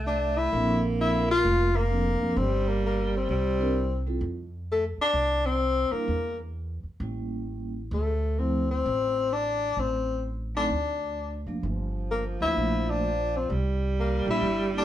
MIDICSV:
0, 0, Header, 1, 6, 480
1, 0, Start_track
1, 0, Key_signature, -1, "major"
1, 0, Tempo, 463320
1, 541, Time_signature, 4, 2, 24, 8
1, 15382, End_track
2, 0, Start_track
2, 0, Title_t, "Tenor saxophone"
2, 0, Program_c, 0, 66
2, 70, Note_on_c, 0, 62, 99
2, 386, Note_on_c, 0, 64, 114
2, 402, Note_off_c, 0, 62, 0
2, 859, Note_off_c, 0, 64, 0
2, 1044, Note_on_c, 0, 64, 99
2, 1324, Note_off_c, 0, 64, 0
2, 1360, Note_on_c, 0, 65, 111
2, 1827, Note_on_c, 0, 58, 100
2, 1842, Note_off_c, 0, 65, 0
2, 2461, Note_on_c, 0, 60, 97
2, 2476, Note_off_c, 0, 58, 0
2, 2780, Note_on_c, 0, 58, 82
2, 2795, Note_off_c, 0, 60, 0
2, 2939, Note_off_c, 0, 58, 0
2, 2962, Note_on_c, 0, 58, 81
2, 3240, Note_off_c, 0, 58, 0
2, 3279, Note_on_c, 0, 60, 79
2, 4179, Note_off_c, 0, 60, 0
2, 4886, Note_on_c, 0, 57, 80
2, 5020, Note_off_c, 0, 57, 0
2, 5194, Note_on_c, 0, 62, 95
2, 5655, Note_on_c, 0, 60, 101
2, 5670, Note_off_c, 0, 62, 0
2, 6132, Note_on_c, 0, 58, 88
2, 6147, Note_off_c, 0, 60, 0
2, 6608, Note_off_c, 0, 58, 0
2, 8224, Note_on_c, 0, 57, 83
2, 8692, Note_on_c, 0, 60, 83
2, 8707, Note_off_c, 0, 57, 0
2, 9007, Note_off_c, 0, 60, 0
2, 9021, Note_on_c, 0, 60, 94
2, 9662, Note_on_c, 0, 62, 104
2, 9677, Note_off_c, 0, 60, 0
2, 10146, Note_on_c, 0, 60, 92
2, 10161, Note_off_c, 0, 62, 0
2, 10621, Note_off_c, 0, 60, 0
2, 10945, Note_on_c, 0, 62, 97
2, 11859, Note_off_c, 0, 62, 0
2, 12544, Note_on_c, 0, 58, 88
2, 12685, Note_off_c, 0, 58, 0
2, 12866, Note_on_c, 0, 64, 96
2, 13363, Note_on_c, 0, 62, 106
2, 13378, Note_off_c, 0, 64, 0
2, 13848, Note_on_c, 0, 60, 85
2, 13863, Note_off_c, 0, 62, 0
2, 13998, Note_off_c, 0, 60, 0
2, 14502, Note_on_c, 0, 58, 89
2, 14776, Note_off_c, 0, 58, 0
2, 14819, Note_on_c, 0, 64, 96
2, 15246, Note_off_c, 0, 64, 0
2, 15308, Note_on_c, 0, 62, 98
2, 15382, Note_off_c, 0, 62, 0
2, 15382, End_track
3, 0, Start_track
3, 0, Title_t, "Vibraphone"
3, 0, Program_c, 1, 11
3, 537, Note_on_c, 1, 53, 70
3, 541, Note_on_c, 1, 60, 62
3, 541, Note_on_c, 1, 69, 70
3, 542, Note_on_c, 1, 58, 60
3, 546, Note_on_c, 1, 62, 61
3, 1268, Note_off_c, 1, 53, 0
3, 1270, Note_off_c, 1, 58, 0
3, 1270, Note_off_c, 1, 60, 0
3, 1270, Note_off_c, 1, 69, 0
3, 1273, Note_off_c, 1, 62, 0
3, 1968, Note_on_c, 1, 53, 67
3, 1969, Note_on_c, 1, 60, 59
3, 1971, Note_on_c, 1, 58, 56
3, 1971, Note_on_c, 1, 62, 60
3, 1974, Note_on_c, 1, 69, 65
3, 2450, Note_off_c, 1, 53, 0
3, 2451, Note_off_c, 1, 60, 0
3, 2452, Note_off_c, 1, 58, 0
3, 2452, Note_off_c, 1, 62, 0
3, 2453, Note_off_c, 1, 69, 0
3, 3724, Note_on_c, 1, 55, 70
3, 3727, Note_on_c, 1, 60, 74
3, 3730, Note_on_c, 1, 62, 62
3, 3731, Note_on_c, 1, 64, 62
3, 3737, Note_on_c, 1, 70, 75
3, 3873, Note_off_c, 1, 55, 0
3, 3875, Note_off_c, 1, 60, 0
3, 3876, Note_off_c, 1, 62, 0
3, 3877, Note_off_c, 1, 64, 0
3, 3880, Note_off_c, 1, 70, 0
3, 4212, Note_on_c, 1, 55, 64
3, 4212, Note_on_c, 1, 60, 59
3, 4217, Note_on_c, 1, 64, 54
3, 4220, Note_on_c, 1, 65, 58
3, 4222, Note_on_c, 1, 69, 69
3, 4357, Note_off_c, 1, 55, 0
3, 4357, Note_off_c, 1, 60, 0
3, 4359, Note_off_c, 1, 64, 0
3, 4361, Note_off_c, 1, 65, 0
3, 4362, Note_off_c, 1, 69, 0
3, 6127, Note_on_c, 1, 58, 59
3, 6128, Note_on_c, 1, 55, 66
3, 6134, Note_on_c, 1, 62, 59
3, 6138, Note_on_c, 1, 64, 72
3, 6274, Note_off_c, 1, 58, 0
3, 6275, Note_off_c, 1, 55, 0
3, 6278, Note_off_c, 1, 62, 0
3, 6280, Note_off_c, 1, 64, 0
3, 7258, Note_on_c, 1, 55, 56
3, 7259, Note_on_c, 1, 58, 47
3, 7270, Note_on_c, 1, 61, 47
3, 7273, Note_on_c, 1, 64, 57
3, 7987, Note_off_c, 1, 55, 0
3, 7987, Note_off_c, 1, 58, 0
3, 7993, Note_off_c, 1, 61, 0
3, 7994, Note_off_c, 1, 64, 0
3, 8684, Note_on_c, 1, 53, 62
3, 8686, Note_on_c, 1, 57, 54
3, 8692, Note_on_c, 1, 60, 54
3, 8694, Note_on_c, 1, 64, 68
3, 8972, Note_off_c, 1, 53, 0
3, 8973, Note_off_c, 1, 57, 0
3, 8976, Note_off_c, 1, 60, 0
3, 8977, Note_off_c, 1, 64, 0
3, 10928, Note_on_c, 1, 54, 60
3, 10928, Note_on_c, 1, 57, 62
3, 10931, Note_on_c, 1, 60, 57
3, 10937, Note_on_c, 1, 63, 66
3, 11079, Note_off_c, 1, 54, 0
3, 11079, Note_off_c, 1, 57, 0
3, 11080, Note_off_c, 1, 60, 0
3, 11084, Note_off_c, 1, 63, 0
3, 11885, Note_on_c, 1, 53, 67
3, 11890, Note_on_c, 1, 58, 59
3, 11891, Note_on_c, 1, 57, 57
3, 11894, Note_on_c, 1, 62, 76
3, 12038, Note_off_c, 1, 53, 0
3, 12041, Note_off_c, 1, 57, 0
3, 12041, Note_off_c, 1, 58, 0
3, 12043, Note_off_c, 1, 62, 0
3, 12843, Note_on_c, 1, 53, 67
3, 12846, Note_on_c, 1, 57, 63
3, 12851, Note_on_c, 1, 58, 59
3, 12851, Note_on_c, 1, 62, 69
3, 13462, Note_off_c, 1, 53, 0
3, 13464, Note_off_c, 1, 57, 0
3, 13466, Note_off_c, 1, 58, 0
3, 13466, Note_off_c, 1, 62, 0
3, 14767, Note_on_c, 1, 55, 70
3, 14778, Note_on_c, 1, 62, 63
3, 14779, Note_on_c, 1, 64, 73
3, 14780, Note_on_c, 1, 58, 60
3, 14921, Note_off_c, 1, 55, 0
3, 14927, Note_off_c, 1, 62, 0
3, 14927, Note_off_c, 1, 64, 0
3, 14928, Note_off_c, 1, 58, 0
3, 15256, Note_on_c, 1, 55, 66
3, 15266, Note_on_c, 1, 58, 65
3, 15267, Note_on_c, 1, 62, 62
3, 15271, Note_on_c, 1, 64, 72
3, 15382, Note_off_c, 1, 55, 0
3, 15382, Note_off_c, 1, 58, 0
3, 15382, Note_off_c, 1, 62, 0
3, 15382, Note_off_c, 1, 64, 0
3, 15382, End_track
4, 0, Start_track
4, 0, Title_t, "Alto saxophone"
4, 0, Program_c, 2, 65
4, 0, Note_on_c, 2, 57, 100
4, 495, Note_off_c, 2, 57, 0
4, 538, Note_on_c, 2, 58, 97
4, 2196, Note_off_c, 2, 58, 0
4, 2454, Note_on_c, 2, 55, 106
4, 3370, Note_off_c, 2, 55, 0
4, 3414, Note_on_c, 2, 55, 109
4, 4165, Note_off_c, 2, 55, 0
4, 12043, Note_on_c, 2, 53, 91
4, 13974, Note_on_c, 2, 55, 111
4, 13989, Note_off_c, 2, 53, 0
4, 15382, Note_off_c, 2, 55, 0
4, 15382, End_track
5, 0, Start_track
5, 0, Title_t, "Upright bass"
5, 0, Program_c, 3, 32
5, 0, Note_on_c, 3, 36, 87
5, 498, Note_off_c, 3, 36, 0
5, 545, Note_on_c, 3, 34, 93
5, 1458, Note_off_c, 3, 34, 0
5, 1498, Note_on_c, 3, 29, 88
5, 2248, Note_off_c, 3, 29, 0
5, 2294, Note_on_c, 3, 30, 70
5, 2445, Note_off_c, 3, 30, 0
5, 2450, Note_on_c, 3, 31, 89
5, 3368, Note_off_c, 3, 31, 0
5, 3406, Note_on_c, 3, 36, 86
5, 4326, Note_off_c, 3, 36, 0
5, 4360, Note_on_c, 3, 41, 82
5, 5118, Note_off_c, 3, 41, 0
5, 5319, Note_on_c, 3, 36, 83
5, 6078, Note_off_c, 3, 36, 0
5, 6296, Note_on_c, 3, 40, 82
5, 7047, Note_off_c, 3, 40, 0
5, 7251, Note_on_c, 3, 33, 85
5, 8171, Note_off_c, 3, 33, 0
5, 8197, Note_on_c, 3, 38, 92
5, 9124, Note_off_c, 3, 38, 0
5, 9176, Note_on_c, 3, 33, 90
5, 10095, Note_off_c, 3, 33, 0
5, 10120, Note_on_c, 3, 33, 82
5, 11048, Note_off_c, 3, 33, 0
5, 11084, Note_on_c, 3, 38, 82
5, 11846, Note_off_c, 3, 38, 0
5, 11878, Note_on_c, 3, 30, 66
5, 12039, Note_off_c, 3, 30, 0
5, 12050, Note_on_c, 3, 31, 81
5, 12809, Note_off_c, 3, 31, 0
5, 12853, Note_on_c, 3, 38, 71
5, 13008, Note_off_c, 3, 38, 0
5, 13021, Note_on_c, 3, 34, 87
5, 13941, Note_off_c, 3, 34, 0
5, 13983, Note_on_c, 3, 36, 84
5, 14736, Note_off_c, 3, 36, 0
5, 14767, Note_on_c, 3, 34, 69
5, 14926, Note_off_c, 3, 34, 0
5, 14936, Note_on_c, 3, 31, 85
5, 15382, Note_off_c, 3, 31, 0
5, 15382, End_track
6, 0, Start_track
6, 0, Title_t, "Muted upright bass strokes"
6, 5158, Note_on_c, 9, 29, 39
6, 5261, Note_off_c, 9, 29, 0
6, 6129, Note_on_c, 9, 29, 43
6, 6233, Note_off_c, 9, 29, 0
6, 7079, Note_on_c, 9, 29, 36
6, 7183, Note_off_c, 9, 29, 0
6, 15382, End_track
0, 0, End_of_file